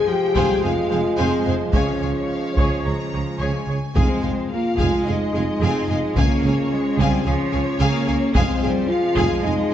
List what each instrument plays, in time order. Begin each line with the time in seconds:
Already playing: trombone section F3 G#3
0.05 cello section F3, french horn section G4, violin section G5
0.33 tuba F1, double bass section F2, cello section G3, viola section G#4 C5, violin section F5 G#5, taiko
0.61 tuba F1, double bass section F2, cello section G#3, french horn section F4, viola section G#4 C5, violin section F5 G#5
0.90 tuba F1, double bass section F2, viola section G#4 C5, violin section F5 G#5
1.17 tuba F1, double bass section F2, french horn section C4, viola section G#4 C5, violin section C5 F5 G#5
1.45 tuba F1, double bass section F2, viola section G#4 C5, violin section F5 G#5
1.71 double bass section C#2, tuba C#2, cello section F3, french horn section C#4, viola section G#4 C#5, violin section F5 G#5, taiko
1.76 violin section C#5
2.01 tuba C#2, double bass section C#2, viola section G#4 C#5, violin section F5 G#5
2.28 violin section F5
2.57 tuba C#2, double bass section C#2, viola section G#4 C#5, taiko
2.84 tuba C#2, double bass section C#2, viola section G#4 C#5, violin section A#5
3.12 double bass section C#2, tuba C#2, viola section G#4 C#5
3.39 double bass section C#2, tuba C#2, viola section G#4 C#5, violin section G#5
3.68 double bass section C#2, tuba C#2, viola section G#4 C#5
3.95 tuba F1, double bass section F2, trombone section F3 G#3, cello section G#3, french horn section C4, viola section G#4, violin section C5 F5 G#5, taiko
4.22 tuba F1, double bass section F2, viola section G#4, violin section F5 G#5
4.52 cello section A#3, french horn section F4, violin section F5
4.77 tuba F1, double bass section F2, cello section G#3, viola section G#4, violin section F5 G#5, taiko
5.05 tuba F1, double bass section F2, french horn section D#4, viola section G#4, violin section D#5 F5 G#5
5.33 tuba F1, double bass section F2, viola section G#4, violin section F5 G#5
5.61 tuba F1, double bass section F2, cello section C4, viola section G#4, violin section F5 G#5
5.87 tuba F1, double bass section F2, cello section G#3, viola section G#4, violin section F5 G#5
6.16 double bass section C#2, tuba C#2, cello section A#3, french horn section C#4, viola section G#4, violin section C#5 F5 G#5, taiko
6.43 tuba C#2, double bass section C#2, viola section G#4, violin section F5 G#5
6.71 cello section G#3
6.97 tuba C#2, double bass section C#2, cello section G3, french horn section C4, viola section G#4, violin section C5 F5 G#5, taiko
7.23 tuba C#2, double bass section C#2, cello section F3, french horn section C#4, viola section G#4, violin section C#5 F5 G#5
7.52 tuba C#2, double bass section C#2, viola section G#4, violin section F5 G#5
7.79 tuba C#2, double bass section C#2, cello section A#3, viola section G#4, violin section F5 G#5
8.07 tuba C#2, double bass section C#2, viola section G#4, violin section F5 G#5
8.34 tuba F1, double bass section F2, trombone section F3 G#3, cello section G#3, french horn section C4, viola section G#4, violin section C5 F5 G#5, taiko
8.62 tuba F1, double bass section F2, cello section G3, viola section G#4, violin section F5 G#5
8.88 cello section F3, french horn section F4, violin section F5
9.16 tuba F1, double bass section F2, cello section G#3, viola section G#4, violin section F5 G#5, taiko
9.43 tuba F1, double bass section F2, french horn section D#4, viola section G#4, violin section D#5 F5 G#5